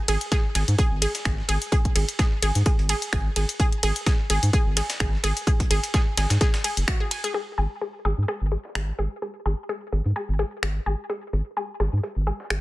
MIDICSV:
0, 0, Header, 1, 4, 480
1, 0, Start_track
1, 0, Tempo, 468750
1, 1764, Time_signature, 4, 2, 24, 8
1, 12910, End_track
2, 0, Start_track
2, 0, Title_t, "Synth pluck"
2, 0, Program_c, 0, 84
2, 85, Note_on_c, 0, 68, 105
2, 146, Note_off_c, 0, 68, 0
2, 324, Note_on_c, 0, 68, 106
2, 416, Note_off_c, 0, 68, 0
2, 564, Note_on_c, 0, 68, 78
2, 656, Note_off_c, 0, 68, 0
2, 803, Note_on_c, 0, 68, 107
2, 865, Note_off_c, 0, 68, 0
2, 1043, Note_on_c, 0, 68, 104
2, 1136, Note_off_c, 0, 68, 0
2, 1283, Note_on_c, 0, 68, 84
2, 1375, Note_off_c, 0, 68, 0
2, 1521, Note_on_c, 0, 68, 107
2, 1584, Note_off_c, 0, 68, 0
2, 1761, Note_on_c, 0, 68, 103
2, 1855, Note_off_c, 0, 68, 0
2, 2002, Note_on_c, 0, 68, 77
2, 2095, Note_off_c, 0, 68, 0
2, 2241, Note_on_c, 0, 68, 105
2, 2304, Note_off_c, 0, 68, 0
2, 2483, Note_on_c, 0, 68, 106
2, 2575, Note_off_c, 0, 68, 0
2, 2723, Note_on_c, 0, 68, 84
2, 2816, Note_off_c, 0, 68, 0
2, 2964, Note_on_c, 0, 68, 105
2, 3025, Note_off_c, 0, 68, 0
2, 3203, Note_on_c, 0, 68, 99
2, 3296, Note_off_c, 0, 68, 0
2, 3443, Note_on_c, 0, 68, 80
2, 3536, Note_off_c, 0, 68, 0
2, 3684, Note_on_c, 0, 68, 104
2, 3745, Note_off_c, 0, 68, 0
2, 3924, Note_on_c, 0, 68, 107
2, 4016, Note_off_c, 0, 68, 0
2, 4163, Note_on_c, 0, 68, 85
2, 4256, Note_off_c, 0, 68, 0
2, 4403, Note_on_c, 0, 68, 102
2, 4465, Note_off_c, 0, 68, 0
2, 4643, Note_on_c, 0, 68, 105
2, 4736, Note_off_c, 0, 68, 0
2, 4883, Note_on_c, 0, 68, 81
2, 4975, Note_off_c, 0, 68, 0
2, 5123, Note_on_c, 0, 68, 97
2, 5185, Note_off_c, 0, 68, 0
2, 5362, Note_on_c, 0, 68, 111
2, 5455, Note_off_c, 0, 68, 0
2, 5602, Note_on_c, 0, 68, 85
2, 5695, Note_off_c, 0, 68, 0
2, 5843, Note_on_c, 0, 68, 105
2, 5905, Note_off_c, 0, 68, 0
2, 6082, Note_on_c, 0, 68, 99
2, 6175, Note_off_c, 0, 68, 0
2, 6323, Note_on_c, 0, 68, 79
2, 6416, Note_off_c, 0, 68, 0
2, 6562, Note_on_c, 0, 68, 106
2, 6624, Note_off_c, 0, 68, 0
2, 6801, Note_on_c, 0, 68, 79
2, 6864, Note_off_c, 0, 68, 0
2, 7041, Note_on_c, 0, 66, 83
2, 7134, Note_off_c, 0, 66, 0
2, 7172, Note_on_c, 0, 68, 79
2, 7224, Note_off_c, 0, 68, 0
2, 7280, Note_on_c, 0, 80, 80
2, 7344, Note_off_c, 0, 80, 0
2, 7413, Note_on_c, 0, 68, 84
2, 7490, Note_off_c, 0, 68, 0
2, 7520, Note_on_c, 0, 68, 99
2, 7583, Note_off_c, 0, 68, 0
2, 7760, Note_on_c, 0, 68, 94
2, 7854, Note_off_c, 0, 68, 0
2, 8002, Note_on_c, 0, 68, 80
2, 8095, Note_off_c, 0, 68, 0
2, 8243, Note_on_c, 0, 68, 101
2, 8305, Note_off_c, 0, 68, 0
2, 8482, Note_on_c, 0, 68, 104
2, 8575, Note_off_c, 0, 68, 0
2, 8722, Note_on_c, 0, 68, 78
2, 8815, Note_off_c, 0, 68, 0
2, 8962, Note_on_c, 0, 68, 89
2, 9024, Note_off_c, 0, 68, 0
2, 9201, Note_on_c, 0, 68, 99
2, 9295, Note_off_c, 0, 68, 0
2, 9443, Note_on_c, 0, 68, 83
2, 9535, Note_off_c, 0, 68, 0
2, 9683, Note_on_c, 0, 68, 96
2, 9745, Note_off_c, 0, 68, 0
2, 9925, Note_on_c, 0, 68, 98
2, 10016, Note_off_c, 0, 68, 0
2, 10163, Note_on_c, 0, 68, 75
2, 10256, Note_off_c, 0, 68, 0
2, 10403, Note_on_c, 0, 68, 101
2, 10465, Note_off_c, 0, 68, 0
2, 10641, Note_on_c, 0, 68, 97
2, 10735, Note_off_c, 0, 68, 0
2, 10882, Note_on_c, 0, 68, 76
2, 10975, Note_off_c, 0, 68, 0
2, 11123, Note_on_c, 0, 68, 104
2, 11185, Note_off_c, 0, 68, 0
2, 11362, Note_on_c, 0, 68, 97
2, 11455, Note_off_c, 0, 68, 0
2, 11604, Note_on_c, 0, 68, 73
2, 11696, Note_off_c, 0, 68, 0
2, 11845, Note_on_c, 0, 68, 102
2, 11906, Note_off_c, 0, 68, 0
2, 12083, Note_on_c, 0, 68, 98
2, 12176, Note_off_c, 0, 68, 0
2, 12323, Note_on_c, 0, 68, 81
2, 12415, Note_off_c, 0, 68, 0
2, 12563, Note_on_c, 0, 68, 101
2, 12625, Note_off_c, 0, 68, 0
2, 12804, Note_on_c, 0, 68, 92
2, 12896, Note_off_c, 0, 68, 0
2, 12910, End_track
3, 0, Start_track
3, 0, Title_t, "Analog synth bass"
3, 0, Program_c, 1, 38
3, 84, Note_on_c, 1, 32, 102
3, 173, Note_off_c, 1, 32, 0
3, 564, Note_on_c, 1, 32, 98
3, 653, Note_off_c, 1, 32, 0
3, 697, Note_on_c, 1, 44, 88
3, 769, Note_off_c, 1, 44, 0
3, 937, Note_on_c, 1, 32, 85
3, 1090, Note_off_c, 1, 32, 0
3, 1284, Note_on_c, 1, 32, 86
3, 1453, Note_off_c, 1, 32, 0
3, 1525, Note_on_c, 1, 32, 85
3, 1613, Note_off_c, 1, 32, 0
3, 2005, Note_on_c, 1, 32, 106
3, 2093, Note_off_c, 1, 32, 0
3, 2484, Note_on_c, 1, 32, 100
3, 2572, Note_off_c, 1, 32, 0
3, 2615, Note_on_c, 1, 44, 88
3, 2688, Note_off_c, 1, 44, 0
3, 2855, Note_on_c, 1, 32, 87
3, 3009, Note_off_c, 1, 32, 0
3, 3203, Note_on_c, 1, 32, 86
3, 3373, Note_off_c, 1, 32, 0
3, 3443, Note_on_c, 1, 32, 82
3, 3532, Note_off_c, 1, 32, 0
3, 3924, Note_on_c, 1, 32, 100
3, 4012, Note_off_c, 1, 32, 0
3, 4402, Note_on_c, 1, 32, 100
3, 4492, Note_off_c, 1, 32, 0
3, 4535, Note_on_c, 1, 44, 90
3, 4608, Note_off_c, 1, 44, 0
3, 4774, Note_on_c, 1, 32, 83
3, 4929, Note_off_c, 1, 32, 0
3, 5123, Note_on_c, 1, 32, 86
3, 5293, Note_off_c, 1, 32, 0
3, 5362, Note_on_c, 1, 32, 81
3, 5452, Note_off_c, 1, 32, 0
3, 5842, Note_on_c, 1, 32, 102
3, 5932, Note_off_c, 1, 32, 0
3, 6322, Note_on_c, 1, 32, 98
3, 6412, Note_off_c, 1, 32, 0
3, 6454, Note_on_c, 1, 44, 86
3, 6528, Note_off_c, 1, 44, 0
3, 6935, Note_on_c, 1, 30, 83
3, 7008, Note_off_c, 1, 30, 0
3, 7763, Note_on_c, 1, 32, 97
3, 7852, Note_off_c, 1, 32, 0
3, 8243, Note_on_c, 1, 32, 95
3, 8332, Note_off_c, 1, 32, 0
3, 8375, Note_on_c, 1, 44, 82
3, 8448, Note_off_c, 1, 44, 0
3, 8615, Note_on_c, 1, 32, 80
3, 8769, Note_off_c, 1, 32, 0
3, 8963, Note_on_c, 1, 32, 83
3, 9133, Note_off_c, 1, 32, 0
3, 9204, Note_on_c, 1, 32, 76
3, 9292, Note_off_c, 1, 32, 0
3, 9684, Note_on_c, 1, 32, 96
3, 9773, Note_off_c, 1, 32, 0
3, 10164, Note_on_c, 1, 32, 91
3, 10253, Note_off_c, 1, 32, 0
3, 10295, Note_on_c, 1, 44, 84
3, 10368, Note_off_c, 1, 44, 0
3, 10535, Note_on_c, 1, 32, 80
3, 10689, Note_off_c, 1, 32, 0
3, 10883, Note_on_c, 1, 32, 81
3, 11053, Note_off_c, 1, 32, 0
3, 11122, Note_on_c, 1, 32, 75
3, 11212, Note_off_c, 1, 32, 0
3, 11603, Note_on_c, 1, 32, 97
3, 11692, Note_off_c, 1, 32, 0
3, 12084, Note_on_c, 1, 32, 91
3, 12172, Note_off_c, 1, 32, 0
3, 12215, Note_on_c, 1, 44, 86
3, 12288, Note_off_c, 1, 44, 0
3, 12455, Note_on_c, 1, 32, 81
3, 12609, Note_off_c, 1, 32, 0
3, 12803, Note_on_c, 1, 32, 80
3, 12910, Note_off_c, 1, 32, 0
3, 12910, End_track
4, 0, Start_track
4, 0, Title_t, "Drums"
4, 85, Note_on_c, 9, 42, 94
4, 85, Note_on_c, 9, 51, 83
4, 86, Note_off_c, 9, 42, 0
4, 86, Note_on_c, 9, 42, 73
4, 187, Note_off_c, 9, 51, 0
4, 189, Note_off_c, 9, 42, 0
4, 217, Note_on_c, 9, 42, 52
4, 319, Note_off_c, 9, 42, 0
4, 325, Note_on_c, 9, 36, 123
4, 325, Note_on_c, 9, 38, 121
4, 325, Note_on_c, 9, 42, 42
4, 427, Note_off_c, 9, 36, 0
4, 427, Note_off_c, 9, 38, 0
4, 428, Note_off_c, 9, 42, 0
4, 565, Note_on_c, 9, 42, 90
4, 565, Note_on_c, 9, 51, 87
4, 566, Note_off_c, 9, 42, 0
4, 566, Note_on_c, 9, 38, 58
4, 566, Note_on_c, 9, 42, 69
4, 668, Note_off_c, 9, 38, 0
4, 668, Note_off_c, 9, 42, 0
4, 668, Note_off_c, 9, 51, 0
4, 697, Note_on_c, 9, 42, 52
4, 799, Note_off_c, 9, 42, 0
4, 804, Note_on_c, 9, 36, 127
4, 805, Note_on_c, 9, 42, 90
4, 907, Note_off_c, 9, 36, 0
4, 907, Note_off_c, 9, 42, 0
4, 1044, Note_on_c, 9, 42, 95
4, 1044, Note_on_c, 9, 51, 86
4, 1045, Note_off_c, 9, 42, 0
4, 1045, Note_on_c, 9, 42, 69
4, 1147, Note_off_c, 9, 51, 0
4, 1148, Note_off_c, 9, 42, 0
4, 1175, Note_on_c, 9, 42, 51
4, 1177, Note_on_c, 9, 38, 52
4, 1278, Note_off_c, 9, 42, 0
4, 1280, Note_off_c, 9, 38, 0
4, 1284, Note_on_c, 9, 26, 102
4, 1284, Note_on_c, 9, 36, 127
4, 1284, Note_on_c, 9, 42, 42
4, 1286, Note_off_c, 9, 42, 0
4, 1286, Note_on_c, 9, 38, 119
4, 1286, Note_on_c, 9, 42, 88
4, 1386, Note_off_c, 9, 26, 0
4, 1386, Note_off_c, 9, 36, 0
4, 1388, Note_off_c, 9, 38, 0
4, 1388, Note_off_c, 9, 42, 0
4, 1417, Note_on_c, 9, 38, 37
4, 1520, Note_off_c, 9, 38, 0
4, 1523, Note_on_c, 9, 42, 91
4, 1523, Note_on_c, 9, 51, 85
4, 1525, Note_off_c, 9, 42, 0
4, 1525, Note_on_c, 9, 42, 69
4, 1626, Note_off_c, 9, 51, 0
4, 1627, Note_off_c, 9, 42, 0
4, 1655, Note_on_c, 9, 42, 51
4, 1758, Note_off_c, 9, 42, 0
4, 1764, Note_on_c, 9, 36, 121
4, 1764, Note_on_c, 9, 42, 42
4, 1765, Note_off_c, 9, 42, 0
4, 1765, Note_on_c, 9, 42, 95
4, 1866, Note_off_c, 9, 36, 0
4, 1867, Note_off_c, 9, 42, 0
4, 1895, Note_on_c, 9, 42, 38
4, 1896, Note_on_c, 9, 36, 59
4, 1998, Note_off_c, 9, 36, 0
4, 1998, Note_off_c, 9, 42, 0
4, 2003, Note_on_c, 9, 42, 92
4, 2003, Note_on_c, 9, 51, 83
4, 2004, Note_off_c, 9, 42, 0
4, 2004, Note_on_c, 9, 42, 73
4, 2105, Note_off_c, 9, 51, 0
4, 2107, Note_off_c, 9, 42, 0
4, 2135, Note_on_c, 9, 42, 56
4, 2238, Note_off_c, 9, 42, 0
4, 2244, Note_on_c, 9, 36, 123
4, 2244, Note_on_c, 9, 38, 116
4, 2244, Note_on_c, 9, 42, 42
4, 2346, Note_off_c, 9, 36, 0
4, 2346, Note_off_c, 9, 38, 0
4, 2346, Note_off_c, 9, 42, 0
4, 2483, Note_on_c, 9, 42, 88
4, 2483, Note_on_c, 9, 51, 87
4, 2484, Note_off_c, 9, 42, 0
4, 2484, Note_on_c, 9, 42, 72
4, 2586, Note_off_c, 9, 51, 0
4, 2587, Note_off_c, 9, 42, 0
4, 2614, Note_on_c, 9, 42, 55
4, 2616, Note_off_c, 9, 42, 0
4, 2616, Note_on_c, 9, 42, 44
4, 2719, Note_off_c, 9, 42, 0
4, 2722, Note_on_c, 9, 42, 42
4, 2723, Note_on_c, 9, 36, 120
4, 2725, Note_off_c, 9, 42, 0
4, 2725, Note_on_c, 9, 42, 92
4, 2826, Note_off_c, 9, 36, 0
4, 2827, Note_off_c, 9, 42, 0
4, 2857, Note_on_c, 9, 42, 45
4, 2959, Note_off_c, 9, 42, 0
4, 2962, Note_on_c, 9, 42, 95
4, 2962, Note_on_c, 9, 51, 90
4, 2965, Note_off_c, 9, 42, 0
4, 2965, Note_on_c, 9, 42, 67
4, 3064, Note_off_c, 9, 51, 0
4, 3067, Note_off_c, 9, 42, 0
4, 3094, Note_on_c, 9, 42, 51
4, 3196, Note_off_c, 9, 42, 0
4, 3202, Note_on_c, 9, 26, 105
4, 3202, Note_on_c, 9, 42, 42
4, 3203, Note_on_c, 9, 36, 122
4, 3204, Note_off_c, 9, 42, 0
4, 3204, Note_on_c, 9, 38, 122
4, 3204, Note_on_c, 9, 42, 91
4, 3304, Note_off_c, 9, 26, 0
4, 3305, Note_off_c, 9, 36, 0
4, 3306, Note_off_c, 9, 38, 0
4, 3306, Note_off_c, 9, 42, 0
4, 3442, Note_on_c, 9, 42, 93
4, 3442, Note_on_c, 9, 51, 87
4, 3443, Note_off_c, 9, 42, 0
4, 3443, Note_on_c, 9, 42, 65
4, 3544, Note_off_c, 9, 51, 0
4, 3546, Note_off_c, 9, 42, 0
4, 3574, Note_on_c, 9, 42, 56
4, 3677, Note_off_c, 9, 42, 0
4, 3682, Note_on_c, 9, 36, 114
4, 3683, Note_on_c, 9, 42, 93
4, 3785, Note_off_c, 9, 36, 0
4, 3785, Note_off_c, 9, 42, 0
4, 3814, Note_on_c, 9, 42, 34
4, 3916, Note_off_c, 9, 42, 0
4, 3922, Note_on_c, 9, 42, 85
4, 3922, Note_on_c, 9, 51, 89
4, 3923, Note_off_c, 9, 42, 0
4, 3923, Note_on_c, 9, 42, 74
4, 4025, Note_off_c, 9, 51, 0
4, 4026, Note_off_c, 9, 42, 0
4, 4055, Note_on_c, 9, 42, 56
4, 4157, Note_off_c, 9, 42, 0
4, 4162, Note_on_c, 9, 36, 115
4, 4162, Note_on_c, 9, 38, 120
4, 4162, Note_on_c, 9, 42, 46
4, 4265, Note_off_c, 9, 36, 0
4, 4265, Note_off_c, 9, 38, 0
4, 4265, Note_off_c, 9, 42, 0
4, 4402, Note_on_c, 9, 42, 69
4, 4402, Note_on_c, 9, 51, 92
4, 4504, Note_off_c, 9, 51, 0
4, 4505, Note_off_c, 9, 42, 0
4, 4534, Note_on_c, 9, 42, 55
4, 4637, Note_off_c, 9, 42, 0
4, 4642, Note_on_c, 9, 36, 117
4, 4642, Note_on_c, 9, 42, 47
4, 4745, Note_off_c, 9, 36, 0
4, 4745, Note_off_c, 9, 42, 0
4, 4882, Note_on_c, 9, 42, 91
4, 4882, Note_on_c, 9, 51, 95
4, 4883, Note_off_c, 9, 42, 0
4, 4883, Note_on_c, 9, 38, 102
4, 4883, Note_on_c, 9, 42, 77
4, 4985, Note_off_c, 9, 38, 0
4, 4985, Note_off_c, 9, 42, 0
4, 4985, Note_off_c, 9, 51, 0
4, 5014, Note_on_c, 9, 38, 107
4, 5014, Note_on_c, 9, 42, 79
4, 5117, Note_off_c, 9, 38, 0
4, 5117, Note_off_c, 9, 42, 0
4, 5122, Note_on_c, 9, 36, 119
4, 5122, Note_on_c, 9, 38, 122
4, 5122, Note_on_c, 9, 42, 93
4, 5123, Note_off_c, 9, 42, 0
4, 5123, Note_on_c, 9, 26, 105
4, 5123, Note_on_c, 9, 42, 45
4, 5224, Note_off_c, 9, 38, 0
4, 5225, Note_off_c, 9, 26, 0
4, 5225, Note_off_c, 9, 36, 0
4, 5225, Note_off_c, 9, 42, 0
4, 5254, Note_on_c, 9, 38, 40
4, 5357, Note_off_c, 9, 38, 0
4, 5361, Note_on_c, 9, 42, 76
4, 5364, Note_off_c, 9, 42, 0
4, 5364, Note_on_c, 9, 42, 85
4, 5364, Note_on_c, 9, 51, 91
4, 5466, Note_off_c, 9, 42, 0
4, 5466, Note_off_c, 9, 51, 0
4, 5496, Note_on_c, 9, 42, 56
4, 5598, Note_off_c, 9, 42, 0
4, 5601, Note_on_c, 9, 42, 65
4, 5602, Note_on_c, 9, 36, 116
4, 5604, Note_off_c, 9, 42, 0
4, 5604, Note_on_c, 9, 42, 46
4, 5704, Note_off_c, 9, 36, 0
4, 5707, Note_off_c, 9, 42, 0
4, 5734, Note_on_c, 9, 36, 65
4, 5734, Note_on_c, 9, 42, 80
4, 5736, Note_off_c, 9, 42, 0
4, 5736, Note_on_c, 9, 42, 36
4, 5837, Note_off_c, 9, 36, 0
4, 5838, Note_off_c, 9, 42, 0
4, 5844, Note_on_c, 9, 42, 89
4, 5844, Note_on_c, 9, 51, 84
4, 5946, Note_off_c, 9, 42, 0
4, 5946, Note_off_c, 9, 51, 0
4, 5974, Note_on_c, 9, 42, 65
4, 5976, Note_off_c, 9, 42, 0
4, 5976, Note_on_c, 9, 42, 57
4, 6078, Note_off_c, 9, 42, 0
4, 6082, Note_on_c, 9, 38, 124
4, 6082, Note_on_c, 9, 42, 91
4, 6083, Note_on_c, 9, 36, 118
4, 6084, Note_off_c, 9, 42, 0
4, 6084, Note_on_c, 9, 42, 45
4, 6184, Note_off_c, 9, 38, 0
4, 6185, Note_off_c, 9, 36, 0
4, 6186, Note_off_c, 9, 42, 0
4, 6323, Note_on_c, 9, 38, 106
4, 6323, Note_on_c, 9, 42, 92
4, 6323, Note_on_c, 9, 51, 91
4, 6425, Note_off_c, 9, 38, 0
4, 6425, Note_off_c, 9, 42, 0
4, 6425, Note_off_c, 9, 51, 0
4, 6454, Note_on_c, 9, 38, 105
4, 6454, Note_on_c, 9, 42, 80
4, 6455, Note_off_c, 9, 42, 0
4, 6455, Note_on_c, 9, 42, 60
4, 6556, Note_off_c, 9, 38, 0
4, 6558, Note_off_c, 9, 42, 0
4, 6563, Note_on_c, 9, 36, 121
4, 6563, Note_on_c, 9, 38, 107
4, 6563, Note_on_c, 9, 42, 79
4, 6666, Note_off_c, 9, 36, 0
4, 6666, Note_off_c, 9, 38, 0
4, 6666, Note_off_c, 9, 42, 0
4, 6696, Note_on_c, 9, 38, 105
4, 6696, Note_on_c, 9, 42, 85
4, 6798, Note_off_c, 9, 38, 0
4, 6798, Note_off_c, 9, 42, 0
4, 6803, Note_on_c, 9, 42, 93
4, 6803, Note_on_c, 9, 51, 90
4, 6906, Note_off_c, 9, 42, 0
4, 6906, Note_off_c, 9, 51, 0
4, 6935, Note_on_c, 9, 42, 57
4, 7037, Note_off_c, 9, 42, 0
4, 7043, Note_on_c, 9, 26, 106
4, 7043, Note_on_c, 9, 36, 119
4, 7043, Note_on_c, 9, 42, 44
4, 7044, Note_off_c, 9, 42, 0
4, 7044, Note_on_c, 9, 42, 65
4, 7145, Note_off_c, 9, 26, 0
4, 7146, Note_off_c, 9, 36, 0
4, 7146, Note_off_c, 9, 42, 0
4, 7283, Note_on_c, 9, 42, 90
4, 7283, Note_on_c, 9, 51, 88
4, 7285, Note_off_c, 9, 42, 0
4, 7285, Note_on_c, 9, 42, 68
4, 7385, Note_off_c, 9, 51, 0
4, 7387, Note_off_c, 9, 42, 0
4, 7415, Note_on_c, 9, 42, 58
4, 7517, Note_off_c, 9, 42, 0
4, 7763, Note_on_c, 9, 42, 64
4, 7866, Note_off_c, 9, 42, 0
4, 8005, Note_on_c, 9, 42, 83
4, 8107, Note_off_c, 9, 42, 0
4, 8244, Note_on_c, 9, 38, 52
4, 8347, Note_off_c, 9, 38, 0
4, 8485, Note_on_c, 9, 42, 81
4, 8587, Note_off_c, 9, 42, 0
4, 8726, Note_on_c, 9, 42, 62
4, 8828, Note_off_c, 9, 42, 0
4, 8857, Note_on_c, 9, 38, 49
4, 8960, Note_off_c, 9, 38, 0
4, 8963, Note_on_c, 9, 26, 100
4, 9066, Note_off_c, 9, 26, 0
4, 9097, Note_on_c, 9, 38, 37
4, 9200, Note_off_c, 9, 38, 0
4, 9205, Note_on_c, 9, 42, 61
4, 9307, Note_off_c, 9, 42, 0
4, 9445, Note_on_c, 9, 42, 88
4, 9547, Note_off_c, 9, 42, 0
4, 9684, Note_on_c, 9, 42, 68
4, 9787, Note_off_c, 9, 42, 0
4, 9924, Note_on_c, 9, 42, 83
4, 10027, Note_off_c, 9, 42, 0
4, 10165, Note_on_c, 9, 42, 65
4, 10267, Note_off_c, 9, 42, 0
4, 10296, Note_on_c, 9, 42, 40
4, 10398, Note_off_c, 9, 42, 0
4, 10404, Note_on_c, 9, 42, 83
4, 10506, Note_off_c, 9, 42, 0
4, 10536, Note_on_c, 9, 42, 41
4, 10639, Note_off_c, 9, 42, 0
4, 10644, Note_on_c, 9, 42, 65
4, 10746, Note_off_c, 9, 42, 0
4, 10883, Note_on_c, 9, 26, 99
4, 10986, Note_off_c, 9, 26, 0
4, 11124, Note_on_c, 9, 42, 64
4, 11226, Note_off_c, 9, 42, 0
4, 11365, Note_on_c, 9, 42, 84
4, 11467, Note_off_c, 9, 42, 0
4, 11604, Note_on_c, 9, 42, 66
4, 11707, Note_off_c, 9, 42, 0
4, 11844, Note_on_c, 9, 42, 83
4, 11946, Note_off_c, 9, 42, 0
4, 12085, Note_on_c, 9, 38, 53
4, 12085, Note_on_c, 9, 42, 68
4, 12187, Note_off_c, 9, 38, 0
4, 12187, Note_off_c, 9, 42, 0
4, 12325, Note_on_c, 9, 42, 85
4, 12427, Note_off_c, 9, 42, 0
4, 12565, Note_on_c, 9, 42, 65
4, 12667, Note_off_c, 9, 42, 0
4, 12697, Note_on_c, 9, 38, 50
4, 12799, Note_off_c, 9, 38, 0
4, 12804, Note_on_c, 9, 26, 103
4, 12907, Note_off_c, 9, 26, 0
4, 12910, End_track
0, 0, End_of_file